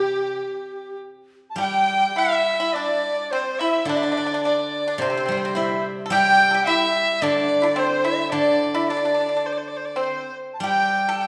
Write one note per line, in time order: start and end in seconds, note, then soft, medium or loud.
0.00 0.39 C3 soft
0.00 0.96 G3 medium
0.00 0.96 G4 medium
0.00 0.97 G4 medium
1.50 1.58 A5 medium
1.56 3.30 G3 medium
1.56 2.13 G4 medium
1.56 2.18 G5 medium
1.61 2.20 G5 loud
2.16 2.57 E4 medium
2.16 2.74 E5 medium
2.16 2.76 E5 medium
2.60 2.74 E4 medium
2.73 3.28 D4 medium
2.73 3.16 D5 medium
2.73 3.31 D5 medium
3.17 3.33 D5 medium
3.31 3.58 C4 medium
3.31 3.61 C5 medium
3.31 3.60 C5 medium
3.59 3.86 E4 medium
3.59 3.87 E5 medium
3.85 5.55 D3 medium
3.85 3.96 D4 medium
3.85 4.40 D5 loud
3.85 3.98 D5 medium
3.96 4.02 D4 medium
3.96 4.06 E5 medium
4.03 4.10 D4 medium
4.03 4.15 D5 medium
4.12 4.16 D4 medium
4.12 4.20 E5 medium
4.17 4.24 D4 medium
4.17 4.44 D5 medium
4.26 4.33 D4 medium
4.34 4.40 D4 medium
4.43 4.84 D4 medium
4.43 5.01 D5 medium
4.43 4.84 D5 medium
4.86 5.00 D4 medium
4.86 5.01 D5 medium
4.98 6.67 C3 medium
4.98 5.08 C4 medium
4.98 5.84 C5 medium
4.98 5.58 C5 medium
5.10 5.16 C4 medium
5.17 5.23 C4 medium
5.26 6.09 G3 medium
5.26 5.31 C4 medium
5.32 5.36 C4 medium
5.37 5.44 C4 medium
5.45 5.52 C4 medium
5.55 6.67 C4 soft
5.55 5.82 E4 medium
5.55 5.85 E5 medium
6.06 6.12 A4 medium
6.10 7.77 G3 medium
6.10 6.48 G4 loud
6.10 6.70 G5 loud
6.10 6.64 G5 loud
6.51 6.67 G4 medium
6.51 6.54 A4 medium
6.66 7.19 E4 medium
6.66 7.24 E5 loud
6.66 7.24 E5 medium
7.22 8.31 D3 medium
7.22 7.58 D4 medium
7.22 7.64 D5 medium
7.22 7.80 D5 loud
7.62 7.77 D4 medium
7.62 7.65 E4 medium
7.62 7.80 D5 medium
7.76 8.03 C4 medium
7.76 8.08 C5 medium
7.76 8.06 C5 medium
8.04 8.31 E4 medium
8.04 8.31 E5 medium
8.04 8.34 E5 medium
8.31 10.04 D3 medium
8.31 8.72 D4 medium
8.31 8.85 D5 medium
8.31 8.78 D5 medium
8.74 8.88 E4 medium
8.74 8.91 E5 medium
8.89 8.96 D4 medium
8.89 9.47 D5 medium
8.89 9.32 D5 medium
8.97 9.04 D4 soft
9.05 9.12 D4 medium
9.14 9.19 D4 medium
9.20 9.27 D4 soft
9.29 9.35 D4 soft
9.33 9.43 D4 medium
9.33 9.46 D5 medium
9.46 9.54 C5 medium
9.52 9.59 D5 medium
9.58 9.69 C5 medium
9.68 9.78 D5 medium
9.77 9.87 C5 medium
9.85 9.98 D5 medium
9.96 10.31 C4 medium
9.96 10.31 C5 medium
9.96 10.34 C5 medium
10.54 10.62 A5 medium
10.60 11.27 G3 medium
10.60 11.04 G4 medium
10.60 11.20 G5 medium
10.60 11.17 G5 loud
11.09 11.21 A4 medium
11.20 11.27 G5 medium